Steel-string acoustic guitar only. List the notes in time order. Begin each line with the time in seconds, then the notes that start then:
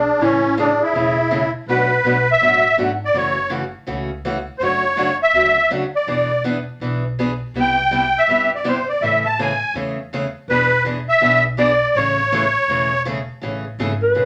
0.21 C#3 E3 A3 C#4 G#4
0.57 C#3 E3 A3 C#4 G#4
0.94 C#3 E3 A3 C#4 G#4
1.31 C#3 E3 A3 C#4 G#4
1.68 B2 F#3 A3 D4 F#4
2.05 B2 F#3 A3 D4 F#4
2.41 B2 F#3 A3 D4 F#4
2.77 B2 F#3 A3 D4 F#4
3.14 C#3 E3 A3 C#4 F#4
3.50 C#3 E3 A3 C#4 F#4
3.87 C#3 E3 A3 C#4 F#4
4.25 C#3 E3 A3 C#4 F#4
4.61 C#3 F#3 A3 D4 F#4
4.96 C#3 F#3 A3 D4 F#4
5.34 C#3 F#3 A3 D4 F#4
5.70 C#3 F#3 A3 D4 F#4
6.07 E3 B3 D4 G#4
6.44 E3 B3 D4 G#4
6.81 E3 B3 D4 G#4
7.19 E3 B3 D4 G#4
7.55 C3 G3 B3 E4 G4
7.91 C3 G3 B3 E4 G4
8.28 C3 G3 B3 E4 G4
8.64 C3 G3 B3 E4 G4
9.03 C#3 E3 A3 C#4 G#4
9.39 C#3 E3 A3 C#4 G#4
9.75 C#3 E3 A3 C#4 G#4
10.13 C#3 E3 A3 C#4 G#4
10.50 E3 B3 D4 G#4
10.85 E3 B3 D4 G#4
11.21 E3 B3 D4 G#4
11.57 E3 B3 D4 G#4
11.97 C#3 E3 A3 C#4 G#4
12.32 C#3 E3 A3 C#4 G#4
12.69 C#3 E3 A3 C#4 G#4
13.05 C#3 E3 A3 C#4 G#4
13.41 C#3 E3 A3 C#4 G#4
13.79 C#3 E3 A3 C#4 G#4
14.15 C#3 E3 A3 C#4 G#4